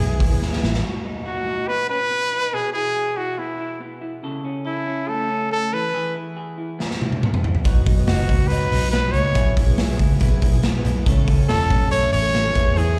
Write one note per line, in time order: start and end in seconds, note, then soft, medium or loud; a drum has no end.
0.00 0.20 B1 medium
0.00 0.30 E3 medium
0.00 0.84 E3 medium
0.00 0.30 G#3 medium
0.00 0.30 B3 medium
0.00 0.40 B3 medium
0.00 0.18 E4 medium
0.00 0.28 E4 medium
0.00 0.59 G#4 loud
0.00 0.83 G#4 medium
0.19 0.56 D#2 medium
0.19 0.61 E4 medium
0.19 kick medium
0.19 hi-hat pedal medium
0.19 open hi-hat medium
0.29 0.53 G#3 soft
0.29 0.52 B3 medium
0.29 0.50 E4 medium
0.41 1.68 B3 medium
0.41 snare medium
0.51 0.85 G#3 soft
0.51 0.84 B3 medium
0.51 0.84 E4 medium
0.51 snare medium
0.62 0.81 A1 medium
0.62 0.88 E4 medium
0.62 snare loud
0.74 snare medium
0.83 2.52 B2 medium
0.83 1.24 F#4 medium
1.05 1.46 D#4 medium
1.26 2.53 F#4 medium
1.26 1.69 F#4 medium
1.47 1.89 D#4 medium
1.68 2.11 B3 medium
1.68 1.90 B4 loud
1.90 2.00 C#4 medium
1.90 2.56 B4 loud
2.00 2.31 D#4 soft
2.11 2.58 B3 medium
2.32 2.58 D#4 medium
2.53 4.23 B2 medium
2.53 2.95 G#4 medium
2.53 2.73 G#4 loud
2.73 3.17 E4 medium
2.73 3.18 G#4 loud
2.96 4.23 G#4 medium
3.17 3.59 E4 medium
3.17 3.40 F#4 medium
3.38 3.79 B3 medium
3.38 3.81 E4 medium
3.59 4.01 E4 medium
3.80 4.28 B3 medium
4.01 4.44 E4 medium
4.23 5.77 C#3 medium
4.23 4.64 A4 medium
4.44 4.85 C#4 medium
4.65 5.10 E4 medium
4.65 5.77 A4 medium
4.87 5.29 C#4 medium
5.08 5.49 A3 medium
5.08 5.51 A4 medium
5.30 5.77 C#4 medium
5.50 5.77 A3 medium
5.50 5.75 A4 loud
5.72 5.93 E3 medium
5.72 6.16 B4 loud
5.94 7.65 E3 medium
5.94 6.35 G#4 medium
6.15 6.57 E4 medium
6.36 7.65 G#4 medium
6.58 6.99 E4 medium
6.79 7.21 B3 medium
6.79 snare medium
6.91 snare medium
7.00 7.42 E4 medium
7.00 high tom medium
7.12 high tom medium
7.21 8.50 B3 medium
7.21 mid tom medium
7.34 mid tom medium
7.43 7.69 E4 medium
7.43 floor tom loud
7.55 floor tom medium
7.64 7.83 B1 loud
7.64 7.97 B2 medium
7.64 9.34 B2 medium
7.64 7.97 F#3 medium
7.64 7.97 B3 medium
7.64 7.95 D#4 medium
7.64 8.06 F#4 medium
7.64 kick loud
7.64 open hi-hat medium
7.86 8.05 B1 medium
7.86 8.27 D#4 medium
7.86 kick loud
7.86 hi-hat pedal medium
7.86 open hi-hat medium
7.97 8.19 F#3 soft
7.97 8.17 B3 soft
7.97 8.15 D#4 medium
8.07 8.26 F#1 loud
8.07 8.49 F#4 medium
8.07 9.35 F#4 medium
8.07 snare loud
8.07 hi-hat pedal medium
8.07 open hi-hat medium
8.16 8.48 F#3 soft
8.16 8.50 B3 medium
8.16 8.50 D#4 medium
8.28 8.65 C#2 loud
8.28 8.70 D#4 medium
8.28 kick medium
8.28 hi-hat pedal medium
8.28 open hi-hat medium
8.48 8.82 B2 medium
8.48 8.82 F#3 medium
8.48 8.92 B3 medium
8.48 8.81 B3 medium
8.48 8.90 B4 loud
8.48 hi-hat pedal medium
8.48 open hi-hat loud
8.52 8.80 D#4 medium
8.71 9.08 B1 loud
8.71 9.12 D#4 medium
8.71 hi-hat pedal medium
8.71 open hi-hat medium
8.81 9.04 F#3 soft
8.81 9.03 B3 soft
8.81 9.00 D#4 medium
8.91 9.40 B3 medium
8.91 9.13 B4 loud
8.91 snare loud
8.91 hi-hat pedal medium
8.91 open hi-hat medium
9.01 9.33 F#3 soft
9.01 9.34 B3 medium
9.01 9.35 D#4 medium
9.12 9.33 C#2 medium
9.12 9.40 D#4 medium
9.12 9.56 C#5 loud
9.12 hi-hat pedal medium
9.12 open hi-hat medium
9.33 9.54 B1 loud
9.33 11.05 B2 medium
9.33 9.67 E3 medium
9.33 9.68 B3 medium
9.33 9.67 E4 medium
9.33 9.77 G#4 medium
9.33 9.65 G#4 medium
9.33 kick loud
9.33 hi-hat pedal medium
9.33 open hi-hat medium
9.57 9.99 E4 medium
9.57 kick loud
9.57 hi-hat pedal medium
9.57 open hi-hat medium
9.66 9.95 B1 medium
9.66 9.91 B3 soft
9.66 9.89 E4 medium
9.66 9.87 G#4 medium
9.78 11.06 G#4 medium
9.78 snare loud
9.78 hi-hat pedal medium
9.78 open hi-hat medium
9.88 10.21 B3 medium
9.88 10.22 E4 medium
9.88 10.21 G#4 medium
9.99 10.18 C#2 medium
9.99 10.42 E4 medium
9.99 kick medium
9.99 hi-hat pedal medium
9.99 open hi-hat medium
10.20 10.39 B1 medium
10.20 10.53 E3 medium
10.20 10.63 B3 medium
10.20 10.54 B3 medium
10.20 10.53 E4 medium
10.20 kick loud
10.20 hi-hat pedal medium
10.20 open hi-hat loud
10.24 10.51 G#4 medium
10.42 10.79 B1 loud
10.42 10.84 E4 medium
10.42 kick loud
10.42 hi-hat pedal medium
10.42 open hi-hat medium
10.52 10.76 B3 soft
10.52 10.75 E4 medium
10.52 10.73 G#4 medium
10.63 11.11 B3 medium
10.63 snare loud
10.63 hi-hat pedal medium
10.63 open hi-hat medium
10.74 11.07 B3 medium
10.74 11.07 E4 medium
10.74 11.07 G#4 medium
10.85 11.04 B1 medium
10.85 11.27 E4 medium
10.85 hi-hat pedal medium
10.85 open hi-hat medium
11.06 11.25 C#2 loud
11.06 12.60 C#3 medium
11.06 11.39 E3 medium
11.06 11.39 A3 medium
11.06 11.38 C#4 medium
11.06 11.47 A4 medium
11.06 11.37 A4 medium
11.06 kick loud
11.06 hi-hat pedal medium
11.06 open hi-hat loud
11.27 11.46 C#2 medium
11.27 11.68 C#4 medium
11.27 kick loud
11.27 hi-hat pedal medium
11.27 open hi-hat medium
11.38 11.61 A3 soft
11.38 11.59 C#4 medium
11.38 11.58 A4 medium
11.49 11.68 E1 loud
11.49 12.60 A4 medium
11.49 11.89 A4 loud
11.49 snare loud
11.49 hi-hat pedal medium
11.49 open hi-hat medium
11.59 11.90 A3 soft
11.59 11.91 C#4 medium
11.59 11.92 A4 medium
11.69 12.07 B1 loud
11.69 12.11 C#4 medium
11.69 kick medium
11.69 hi-hat pedal medium
11.69 open hi-hat medium
11.90 12.23 E3 medium
11.90 12.33 A3 medium
11.90 12.23 A3 medium
11.90 12.23 C#4 medium
11.90 12.21 A4 medium
11.90 12.12 C#5 loud
11.90 hi-hat pedal medium
11.90 open hi-hat loud
12.12 12.49 A1 medium
12.12 12.60 C#4 medium
12.12 12.79 C#5 loud
12.12 hi-hat pedal medium
12.12 open hi-hat medium
12.22 12.46 A3 soft
12.22 12.45 C#4 soft
12.22 12.42 A4 medium
12.34 12.60 A3 medium
12.34 snare loud
12.34 hi-hat pedal medium
12.34 open hi-hat medium
12.43 12.55 A3 soft
12.43 12.55 C#4 medium
12.43 12.55 A4 medium
12.54 12.74 E2 loud
12.54 12.99 E3 medium
12.54 12.75 E3 medium
12.54 12.99 G#3 medium
12.54 12.99 B3 medium
12.54 12.99 E4 medium
12.54 12.99 G#4 medium
12.54 kick loud
12.54 hi-hat pedal medium
12.54 open hi-hat medium
12.76 12.95 E2 loud
12.76 12.99 E3 medium
12.76 12.99 G#4 medium
12.76 hi-hat pedal medium
12.76 open hi-hat medium